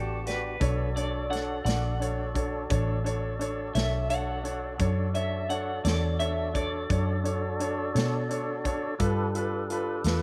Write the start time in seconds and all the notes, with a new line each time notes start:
Already playing: A1 B3 D4 F#4 G4 A4 D5
0.26 F#4 G4 B4 D5, snare, closed hi-hat
0.60 B1 D4 F#4 A4 C#5 D5, kick, closed hi-hat
0.96 D4 A4 C#5 D5, closed hi-hat
1.30 D4 A4 C#5 F#5, closed hi-hat
1.35 snare
1.65 A#1 D4 A4 D5 F#5, snare, closed hi-hat
2.00 D4 A4 C#5, closed hi-hat
2.34 D4 A4 C#5, kick, closed hi-hat
2.70 A1 D4 A4 C#5, kick, closed hi-hat
3.04 D4 A4 C#5, closed hi-hat
3.39 D4 A4 C#5, closed hi-hat
3.74 B1 D4 A4 C#5 E5, snare, closed hi-hat
4.10 D4 A4 C#5 F#5, closed hi-hat
4.43 D4 A4 C#5, closed hi-hat
4.78 F#2 D4 F#4 A4 C#5 D5, kick, closed hi-hat
5.14 D4 A4 C#5 E5, closed hi-hat
5.49 D4 A4 C#5 F#5, closed hi-hat
5.85 E2 D4 A4 C#5 D5, snare, closed hi-hat
6.19 D4 A4 C#5 E5, closed hi-hat
6.54 D4 A4 C#5 D5, kick, closed hi-hat
6.89 F#2 D4 A4 C#5, kick, closed hi-hat
7.24 D4 A4 C#5, closed hi-hat
7.59 D4 A4 C#5, closed hi-hat
7.94 B2 D4 A4 C#5, snare, closed hi-hat
8.29 D4 A4 C#5, closed hi-hat
8.64 D4 A4 C#5, kick, closed hi-hat
8.99 G2 D4 F4 G4 A4 B4, kick, closed hi-hat
9.35 F4 A4 B4, closed hi-hat
9.70 F4 A4 B4, closed hi-hat
10.04 E2 F4 A4 B4, snare, closed hi-hat